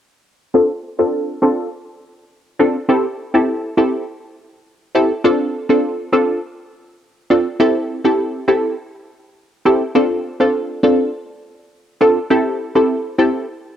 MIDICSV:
0, 0, Header, 1, 2, 480
1, 0, Start_track
1, 0, Tempo, 588235
1, 441, Time_signature, 4, 2, 24, 8
1, 11234, End_track
2, 0, Start_track
2, 0, Title_t, "Synth stab"
2, 0, Program_c, 0, 62
2, 439, Note_on_c, 0, 60, 90
2, 440, Note_on_c, 0, 62, 83
2, 442, Note_on_c, 0, 65, 84
2, 444, Note_on_c, 0, 69, 99
2, 580, Note_off_c, 0, 60, 0
2, 580, Note_off_c, 0, 62, 0
2, 581, Note_off_c, 0, 65, 0
2, 582, Note_off_c, 0, 69, 0
2, 804, Note_on_c, 0, 60, 73
2, 807, Note_on_c, 0, 62, 67
2, 808, Note_on_c, 0, 65, 65
2, 810, Note_on_c, 0, 69, 78
2, 1132, Note_off_c, 0, 60, 0
2, 1133, Note_off_c, 0, 62, 0
2, 1134, Note_off_c, 0, 65, 0
2, 1135, Note_off_c, 0, 69, 0
2, 1159, Note_on_c, 0, 60, 77
2, 1160, Note_on_c, 0, 62, 67
2, 1161, Note_on_c, 0, 65, 71
2, 1164, Note_on_c, 0, 69, 83
2, 1382, Note_off_c, 0, 60, 0
2, 1383, Note_off_c, 0, 62, 0
2, 1383, Note_off_c, 0, 65, 0
2, 1384, Note_off_c, 0, 69, 0
2, 2117, Note_on_c, 0, 60, 73
2, 2119, Note_on_c, 0, 62, 68
2, 2120, Note_on_c, 0, 65, 70
2, 2122, Note_on_c, 0, 69, 84
2, 2259, Note_off_c, 0, 60, 0
2, 2259, Note_off_c, 0, 62, 0
2, 2260, Note_off_c, 0, 65, 0
2, 2261, Note_off_c, 0, 69, 0
2, 2356, Note_on_c, 0, 60, 92
2, 2358, Note_on_c, 0, 64, 83
2, 2360, Note_on_c, 0, 67, 82
2, 2362, Note_on_c, 0, 69, 100
2, 2498, Note_off_c, 0, 60, 0
2, 2499, Note_off_c, 0, 64, 0
2, 2500, Note_off_c, 0, 67, 0
2, 2501, Note_off_c, 0, 69, 0
2, 2726, Note_on_c, 0, 60, 71
2, 2728, Note_on_c, 0, 64, 66
2, 2729, Note_on_c, 0, 67, 66
2, 2731, Note_on_c, 0, 69, 82
2, 3053, Note_off_c, 0, 60, 0
2, 3054, Note_off_c, 0, 64, 0
2, 3055, Note_off_c, 0, 67, 0
2, 3056, Note_off_c, 0, 69, 0
2, 3079, Note_on_c, 0, 60, 80
2, 3080, Note_on_c, 0, 64, 71
2, 3081, Note_on_c, 0, 67, 69
2, 3084, Note_on_c, 0, 69, 87
2, 3302, Note_off_c, 0, 60, 0
2, 3302, Note_off_c, 0, 64, 0
2, 3303, Note_off_c, 0, 67, 0
2, 3304, Note_off_c, 0, 69, 0
2, 4037, Note_on_c, 0, 60, 73
2, 4040, Note_on_c, 0, 64, 66
2, 4041, Note_on_c, 0, 67, 68
2, 4042, Note_on_c, 0, 69, 84
2, 4179, Note_off_c, 0, 60, 0
2, 4180, Note_off_c, 0, 64, 0
2, 4181, Note_off_c, 0, 67, 0
2, 4181, Note_off_c, 0, 69, 0
2, 4278, Note_on_c, 0, 60, 90
2, 4279, Note_on_c, 0, 62, 81
2, 4281, Note_on_c, 0, 65, 85
2, 4282, Note_on_c, 0, 69, 99
2, 4616, Note_off_c, 0, 60, 0
2, 4617, Note_off_c, 0, 62, 0
2, 4618, Note_off_c, 0, 65, 0
2, 4618, Note_off_c, 0, 69, 0
2, 4645, Note_on_c, 0, 60, 76
2, 4647, Note_on_c, 0, 62, 69
2, 4648, Note_on_c, 0, 65, 66
2, 4650, Note_on_c, 0, 69, 78
2, 4972, Note_off_c, 0, 60, 0
2, 4974, Note_off_c, 0, 62, 0
2, 4974, Note_off_c, 0, 65, 0
2, 4975, Note_off_c, 0, 69, 0
2, 4998, Note_on_c, 0, 60, 78
2, 4999, Note_on_c, 0, 62, 73
2, 5001, Note_on_c, 0, 65, 74
2, 5003, Note_on_c, 0, 69, 89
2, 5221, Note_off_c, 0, 60, 0
2, 5222, Note_off_c, 0, 62, 0
2, 5223, Note_off_c, 0, 65, 0
2, 5224, Note_off_c, 0, 69, 0
2, 5957, Note_on_c, 0, 60, 79
2, 5959, Note_on_c, 0, 62, 69
2, 5961, Note_on_c, 0, 65, 71
2, 5963, Note_on_c, 0, 69, 83
2, 6099, Note_off_c, 0, 60, 0
2, 6100, Note_off_c, 0, 62, 0
2, 6101, Note_off_c, 0, 65, 0
2, 6101, Note_off_c, 0, 69, 0
2, 6199, Note_on_c, 0, 60, 93
2, 6200, Note_on_c, 0, 64, 84
2, 6201, Note_on_c, 0, 67, 82
2, 6204, Note_on_c, 0, 69, 101
2, 6536, Note_off_c, 0, 60, 0
2, 6537, Note_off_c, 0, 64, 0
2, 6538, Note_off_c, 0, 67, 0
2, 6539, Note_off_c, 0, 69, 0
2, 6564, Note_on_c, 0, 60, 74
2, 6565, Note_on_c, 0, 64, 67
2, 6567, Note_on_c, 0, 67, 66
2, 6568, Note_on_c, 0, 69, 80
2, 6892, Note_off_c, 0, 60, 0
2, 6893, Note_off_c, 0, 64, 0
2, 6893, Note_off_c, 0, 67, 0
2, 6894, Note_off_c, 0, 69, 0
2, 6917, Note_on_c, 0, 60, 77
2, 6919, Note_on_c, 0, 64, 73
2, 6920, Note_on_c, 0, 67, 70
2, 6923, Note_on_c, 0, 69, 83
2, 7141, Note_off_c, 0, 60, 0
2, 7142, Note_off_c, 0, 64, 0
2, 7143, Note_off_c, 0, 67, 0
2, 7144, Note_off_c, 0, 69, 0
2, 7877, Note_on_c, 0, 60, 73
2, 7879, Note_on_c, 0, 64, 71
2, 7881, Note_on_c, 0, 67, 71
2, 7882, Note_on_c, 0, 69, 84
2, 8019, Note_off_c, 0, 60, 0
2, 8019, Note_off_c, 0, 64, 0
2, 8020, Note_off_c, 0, 67, 0
2, 8021, Note_off_c, 0, 69, 0
2, 8118, Note_on_c, 0, 60, 92
2, 8120, Note_on_c, 0, 62, 83
2, 8120, Note_on_c, 0, 65, 81
2, 8123, Note_on_c, 0, 69, 101
2, 8456, Note_off_c, 0, 60, 0
2, 8457, Note_off_c, 0, 62, 0
2, 8457, Note_off_c, 0, 65, 0
2, 8459, Note_off_c, 0, 69, 0
2, 8486, Note_on_c, 0, 60, 72
2, 8487, Note_on_c, 0, 62, 65
2, 8489, Note_on_c, 0, 65, 67
2, 8491, Note_on_c, 0, 69, 81
2, 8813, Note_off_c, 0, 60, 0
2, 8813, Note_off_c, 0, 62, 0
2, 8814, Note_off_c, 0, 65, 0
2, 8815, Note_off_c, 0, 69, 0
2, 8838, Note_on_c, 0, 60, 79
2, 8839, Note_on_c, 0, 62, 71
2, 8841, Note_on_c, 0, 65, 70
2, 8843, Note_on_c, 0, 69, 86
2, 9062, Note_off_c, 0, 60, 0
2, 9062, Note_off_c, 0, 62, 0
2, 9063, Note_off_c, 0, 65, 0
2, 9064, Note_off_c, 0, 69, 0
2, 9798, Note_on_c, 0, 60, 75
2, 9799, Note_on_c, 0, 62, 68
2, 9801, Note_on_c, 0, 65, 66
2, 9802, Note_on_c, 0, 69, 82
2, 9939, Note_off_c, 0, 60, 0
2, 9940, Note_off_c, 0, 62, 0
2, 9941, Note_off_c, 0, 65, 0
2, 9941, Note_off_c, 0, 69, 0
2, 10039, Note_on_c, 0, 60, 89
2, 10040, Note_on_c, 0, 64, 83
2, 10042, Note_on_c, 0, 67, 82
2, 10044, Note_on_c, 0, 69, 98
2, 10377, Note_off_c, 0, 60, 0
2, 10377, Note_off_c, 0, 64, 0
2, 10378, Note_off_c, 0, 67, 0
2, 10379, Note_off_c, 0, 69, 0
2, 10406, Note_on_c, 0, 60, 73
2, 10407, Note_on_c, 0, 64, 66
2, 10408, Note_on_c, 0, 67, 63
2, 10411, Note_on_c, 0, 69, 80
2, 10733, Note_off_c, 0, 60, 0
2, 10733, Note_off_c, 0, 64, 0
2, 10734, Note_off_c, 0, 67, 0
2, 10735, Note_off_c, 0, 69, 0
2, 10758, Note_on_c, 0, 60, 75
2, 10759, Note_on_c, 0, 64, 71
2, 10761, Note_on_c, 0, 67, 71
2, 10762, Note_on_c, 0, 69, 85
2, 10981, Note_off_c, 0, 60, 0
2, 10982, Note_off_c, 0, 64, 0
2, 10983, Note_off_c, 0, 67, 0
2, 10984, Note_off_c, 0, 69, 0
2, 11234, End_track
0, 0, End_of_file